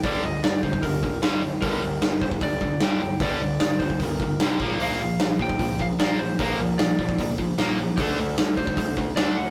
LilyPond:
<<
  \new Staff \with { instrumentName = "Lead electric guitar" } { \time 4/4 \key g \minor \tempo 4 = 151 d''8 ees''8 d''8 c''8 bes'4 r4 | bes'4. c''8 d''4 g''4 | d''4 d''8 c''8 bes'4 r4 | f''4. g''4 f''8 d''8 c''8 |
bes'4 d''4. r4. | a'4. c''4 r8 d''8 fis''8 | }
  \new Staff \with { instrumentName = "Distorted electric guitar" } { \clef bass \time 4/4 \key g \minor <g, d g>8 <g, d>8 <g, d>8 <g, d>8 <g, d>8 <g, d>8 <g, d g>8 <g, d>8 | <g, d g>8 <g, d>8 <g, d>8 <g, d>8 <g, d>8 <g, d>8 <g, d g>8 <g, d>8 | <g, d g>8 <g, d>8 <g, d>8 <g, d>8 <g, d>8 <g, d>8 <g, d g>8 <bes, f bes>8 | <bes, f bes>8 <bes, f>8 <bes, f>8 <bes, f>8 <bes, f>8 <bes, f>8 <bes, f bes>8 <bes, f>8 |
<bes, f bes>8 <bes, f>8 <bes, f>8 <bes, f>8 <bes, f>8 <bes, f>8 <bes, f bes>8 <bes, f>8 | <d a d'>8 <d a>8 <d a>8 <d a>8 <d a>8 <d a>8 <d a d'>8 <d a>8 | }
  \new Staff \with { instrumentName = "Picked electric bass" } { \clef bass \time 4/4 \key g \minor g,,8 g,,8 g,,8 g,,8 g,,4 g,,4 | g,,8 g,,8 g,,8 g,,8 g,,4 g,,4 | g,,8 g,,8 g,,8 g,,8 g,,4 c,8 bes,,8 | bes,,8 bes,,8 bes,,8 bes,,8 bes,,4 bes,,4 |
bes,,8 bes,,8 bes,,8 bes,,8 bes,,4 bes,,4 | d,8 d,8 d,8 d,8 d,4 d,4 | }
  \new DrumStaff \with { instrumentName = "Drums" } \drummode { \time 4/4 <hho bd>4 <hho sn>8 bd16 bd16 <hho bd>8 bd8 <hho sn>4 | <hho bd>4 <hho sn>8 bd16 bd16 <hho bd>8 bd8 <hho sn>4 | <hho bd>4 <hho sn>8 bd16 bd16 <hho bd>8 bd8 <hho sn>8 bd8 | hho4 <hho sn>8 bd16 bd16 <hho bd>8 bd8 <hho sn>4 |
<hho bd>4 <hho sn>8 bd16 bd16 <hho bd>8 bd8 <hho sn>4 | <hho bd>4 <hho sn>8 bd16 bd16 <hho bd>8 bd8 <hho sn>4 | }
>>